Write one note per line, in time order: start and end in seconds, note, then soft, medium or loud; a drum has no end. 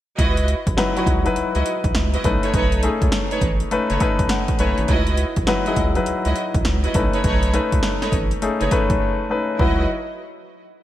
0.18 0.55 C#2 loud
0.18 0.46 E4 medium
0.18 0.46 F#4 medium
0.18 0.46 B4 medium
0.18 0.46 D#5 loud
0.18 kick medium
0.18 closed hi-hat medium
0.37 closed hi-hat medium
0.48 closed hi-hat medium
0.67 0.75 B1 medium
0.67 kick medium
0.67 closed hi-hat medium
0.77 0.91 F#3 medium
0.77 0.92 D#4 medium
0.77 0.92 E4 medium
0.77 0.92 B4 loud
0.77 snare loud
0.77 closed hi-hat medium
0.96 1.17 F#3 medium
0.96 1.17 D#4 medium
0.96 1.05 E4 medium
0.96 1.17 E4 medium
0.96 1.05 F#4 medium
0.96 1.05 B4 medium
0.96 1.17 C#5 medium
0.96 1.05 D#5 medium
0.96 closed hi-hat medium
1.06 1.29 C#2 medium
1.06 kick medium
1.06 closed hi-hat medium
1.25 2.15 F#3 medium
1.25 2.15 D#4 medium
1.25 2.15 E4 medium
1.25 2.15 B4 loud
1.25 closed hi-hat soft
1.36 1.44 C#2 soft
1.36 closed hi-hat medium
1.55 1.63 C#2 medium
1.55 1.64 E4 medium
1.55 1.64 F#4 medium
1.55 1.64 B4 medium
1.55 1.64 D#5 medium
1.55 closed hi-hat soft
1.66 closed hi-hat medium
1.84 1.92 B1 medium
1.84 kick medium
1.84 closed hi-hat medium
1.95 2.17 C#2 medium
1.95 snare loud
1.95 closed hi-hat medium
2.13 2.23 E4 medium
2.13 2.23 F#4 medium
2.13 2.23 B4 medium
2.13 2.23 D#5 medium
2.13 closed hi-hat soft
2.24 2.39 B1 loud
2.24 2.74 A3 medium
2.24 2.75 C#4 medium
2.24 2.75 D#4 medium
2.24 2.75 B4 loud
2.24 kick loud
2.24 closed hi-hat medium
2.42 2.52 D#4 medium
2.42 2.52 A4 medium
2.42 2.52 B4 medium
2.42 2.52 C#5 medium
2.42 closed hi-hat medium
2.53 2.90 B1 loud
2.53 2.81 D#4 medium
2.53 2.81 A4 medium
2.53 2.81 B4 medium
2.53 2.81 C#5 medium
2.53 kick loud
2.53 closed hi-hat medium
2.72 closed hi-hat medium
2.83 3.53 A3 medium
2.83 3.53 C#4 medium
2.83 3.54 D#4 medium
2.83 3.54 G#4 loud
2.83 closed hi-hat medium
3.02 3.10 C#2 medium
3.02 kick medium
3.02 closed hi-hat medium
3.12 snare loud
3.12 closed hi-hat medium
3.31 3.40 D#4 medium
3.31 3.40 A4 medium
3.31 3.40 B4 medium
3.31 3.40 C#5 medium
3.31 closed hi-hat medium
3.41 3.64 A1 medium
3.41 kick medium
3.41 closed hi-hat medium
3.60 closed hi-hat soft
3.71 3.79 F#1 medium
3.71 3.96 A3 medium
3.71 3.96 C#4 medium
3.71 3.96 D#4 medium
3.71 3.96 B4 loud
3.71 closed hi-hat medium
3.90 3.98 F#1 medium
3.90 3.99 D#4 medium
3.90 3.99 A4 medium
3.90 3.99 B4 medium
3.90 3.99 C#5 medium
3.90 closed hi-hat soft
4.00 4.49 A3 medium
4.00 4.50 C#4 medium
4.00 4.50 D#4 medium
4.00 4.50 B4 loud
4.00 4.28 B5 medium
4.00 kick medium
4.00 closed hi-hat medium
4.19 4.27 B1 medium
4.19 kick medium
4.19 closed hi-hat medium
4.29 4.85 F#5 medium
4.29 snare loud
4.29 closed hi-hat medium
4.48 kick medium
4.48 closed hi-hat medium
4.59 4.74 B1 medium
4.59 4.89 A3 medium
4.59 4.89 C#4 medium
4.59 4.75 D#4 medium
4.59 4.89 D#4 medium
4.59 4.76 A4 medium
4.59 4.76 B4 medium
4.59 4.89 B4 medium
4.59 4.76 C#5 medium
4.59 closed hi-hat medium
4.78 4.86 G#1 medium
4.78 closed hi-hat soft
4.88 5.25 C#2 loud
4.88 5.16 E4 medium
4.88 5.16 F#4 medium
4.88 5.17 B4 medium
4.88 5.17 D#5 loud
4.88 kick medium
4.88 closed hi-hat medium
5.07 closed hi-hat medium
5.17 closed hi-hat medium
5.36 5.45 B1 medium
5.36 kick medium
5.36 closed hi-hat medium
5.47 5.62 F#3 loud
5.47 5.62 D#4 medium
5.47 5.62 E4 medium
5.47 5.62 B4 loud
5.47 snare loud
5.47 closed hi-hat medium
5.66 5.87 F#3 medium
5.66 5.87 D#4 medium
5.66 5.75 E4 medium
5.66 5.88 E4 medium
5.66 5.76 F#4 medium
5.66 5.88 G#4 medium
5.66 5.76 B4 medium
5.66 5.76 D#5 medium
5.66 closed hi-hat soft
5.76 5.99 C#2 loud
5.76 kick medium
5.76 closed hi-hat medium
5.95 6.85 F#3 medium
5.95 6.86 D#4 medium
5.95 6.86 E4 medium
5.95 6.86 B4 medium
5.95 closed hi-hat soft
6.06 6.15 C#2 medium
6.06 closed hi-hat medium
6.25 6.34 C#2 loud
6.25 6.34 E4 medium
6.25 6.34 F#4 medium
6.25 6.35 B4 medium
6.25 6.35 D#5 medium
6.25 closed hi-hat soft
6.36 closed hi-hat medium
6.54 6.63 B1 loud
6.54 kick loud
6.54 closed hi-hat soft
6.65 6.88 C#2 medium
6.65 snare medium
6.65 closed hi-hat medium
6.84 6.93 E4 medium
6.84 6.93 F#4 medium
6.84 6.93 B4 medium
6.84 6.93 D#5 medium
6.84 closed hi-hat soft
6.94 7.09 B1 medium
6.94 7.45 A3 medium
6.94 7.45 C#4 medium
6.94 7.45 D#4 medium
6.94 7.46 B4 medium
6.94 kick medium
6.94 closed hi-hat medium
7.13 7.22 D#4 medium
7.13 7.23 A4 medium
7.13 7.23 B4 medium
7.13 7.23 C#5 medium
7.13 closed hi-hat soft
7.24 7.61 B1 loud
7.24 7.52 D#4 medium
7.24 7.52 A4 medium
7.24 7.52 B4 medium
7.24 7.52 C#5 loud
7.24 kick loud
7.24 closed hi-hat medium
7.43 closed hi-hat medium
7.53 8.24 A3 medium
7.53 8.24 C#4 medium
7.53 8.24 D#4 medium
7.53 8.24 B4 loud
7.53 closed hi-hat medium
7.72 7.81 C#2 medium
7.72 kick medium
7.72 closed hi-hat medium
7.83 snare loud
7.83 closed hi-hat medium
8.01 8.11 D#4 medium
8.01 8.11 A4 medium
8.01 8.11 B4 medium
8.01 8.11 C#5 medium
8.01 snare medium
8.01 closed hi-hat medium
8.12 8.35 A1 medium
8.12 kick medium
8.12 closed hi-hat medium
8.31 closed hi-hat soft
8.42 8.50 F#1 medium
8.42 8.66 A3 medium
8.42 8.66 C#4 medium
8.42 8.67 D#4 medium
8.42 8.67 G#4 loud
8.42 closed hi-hat medium
8.60 8.69 F#1 medium
8.60 8.70 D#4 medium
8.60 8.70 A4 medium
8.60 8.70 B4 medium
8.60 8.70 C#5 medium
8.60 closed hi-hat medium
8.71 9.20 A3 medium
8.71 9.20 C#4 medium
8.71 9.20 D#4 medium
8.71 9.21 B4 loud
8.71 kick medium
8.71 closed hi-hat medium
8.90 8.98 B1 medium
8.90 kick loud
8.90 closed hi-hat medium
9.30 9.59 A3 medium
9.30 9.60 C#4 medium
9.30 9.58 D#4 medium
9.30 9.58 B4 medium
9.59 9.87 C#2 loud
9.59 9.87 F#3 medium
9.59 9.87 D#4 medium
9.59 9.82 E4 medium
9.59 9.87 E4 medium
9.59 9.83 F#4 medium
9.59 9.83 B4 medium
9.59 9.87 B4 medium
9.59 9.83 D#5 medium
9.59 kick medium